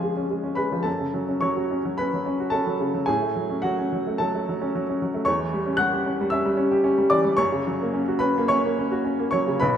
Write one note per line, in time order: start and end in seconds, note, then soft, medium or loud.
0.00 0.82 F2 soft
0.00 0.72 F3 soft
0.00 0.03 G#3 soft
0.00 0.25 G#3 soft
0.00 0.17 C#4 soft
0.00 0.89 F4 soft
0.00 0.89 G#4 medium
0.00 0.89 F5 medium
0.00 0.89 G#5 medium
0.17 0.39 C#4 soft
0.31 0.53 G#3 soft
0.43 0.66 C#4 soft
0.55 0.81 G#3 soft
0.55 0.83 B4 medium
0.55 0.85 B5 medium
0.72 0.86 F3 soft
0.83 3.03 F#2 soft
0.83 1.38 A4 soft
0.83 1.41 A5 medium
0.99 1.23 C#3 soft
1.14 1.37 F#3 soft
1.29 1.51 C#4 soft
1.41 1.65 F#3 soft
1.41 1.93 C#5 medium
1.41 1.96 C#6 medium
1.56 1.78 F#4 soft
1.71 1.93 C#4 soft
1.85 2.06 F#3 soft
1.98 2.21 C#4 soft
1.98 2.49 B4 medium
1.98 2.52 B5 medium
2.14 2.34 F#3 soft
2.26 2.47 C#4 soft
2.40 2.61 F#4 soft
2.50 2.74 C#4 soft
2.50 3.03 A4 medium
2.50 3.07 A5 medium
2.67 2.88 F#3 soft
2.80 3.02 C#3 soft
2.95 3.08 F#3 soft
3.06 5.24 A2 medium
3.06 3.60 G#4 medium
3.06 3.63 G#5 medium
3.22 3.44 A3 soft
3.36 3.58 F#3 soft
3.50 3.72 C#4 soft
3.62 3.86 F#3 soft
3.62 4.15 F#4 medium
3.62 4.18 F#5 medium
3.79 4.00 C#4 soft
3.93 4.14 F#3 soft
4.07 4.28 A3 soft
4.18 4.42 F#3 medium
4.18 4.97 A4 medium
4.18 5.01 A5 medium
4.35 4.56 A3 soft
4.49 4.70 F#3 soft
4.62 4.83 C#4 soft
4.75 4.97 F#3 medium
4.89 5.10 C#4 soft
5.02 5.23 F#3 soft
5.14 5.28 A3 medium
5.25 7.35 E2 medium
5.25 5.76 C#5 medium
5.25 5.79 C#6 medium
5.39 5.61 E3 soft
5.53 5.75 G3 medium
5.66 5.88 C#4 soft
5.77 6.01 G3 soft
5.77 6.29 F#5 medium
5.77 6.32 F#6 loud
5.93 6.15 G4 soft
6.06 6.28 C#4 soft
6.21 6.42 G3 medium
6.30 6.54 C#4 medium
6.30 7.08 E5 medium
6.30 7.11 E6 medium
6.46 6.67 G3 medium
6.57 6.79 C#4 medium
6.72 6.93 G4 medium
6.84 7.06 C#4 medium
6.98 7.20 G3 medium
7.10 7.34 E3 medium
7.10 7.36 D5 medium
7.10 7.38 D6 loud
7.25 7.39 G3 medium
7.37 9.57 F#2 medium
7.37 8.16 C#5 medium
7.37 8.19 C#6 loud
7.52 7.74 C#3 soft
7.67 7.88 F#3 medium
7.82 8.02 A#3 medium
7.94 8.15 C#4 medium
8.08 8.30 F#4 medium
8.19 8.43 C#4 medium
8.19 8.46 B4 medium
8.19 8.48 B5 medium
8.38 8.59 A#3 medium
8.48 8.72 C#4 medium
8.48 9.29 C#5 medium
8.48 9.29 C#6 loud
8.65 8.87 A#3 medium
8.79 9.00 C#4 medium
8.92 9.14 F#4 medium
9.05 9.27 C#4 medium
9.19 9.42 A#3 medium
9.31 9.56 F#3 medium
9.31 9.59 C#5 medium
9.31 9.60 C#6 medium
9.47 9.62 C#3 medium
9.60 9.77 B1 medium
9.60 9.77 B4 medium
9.60 9.77 B5 medium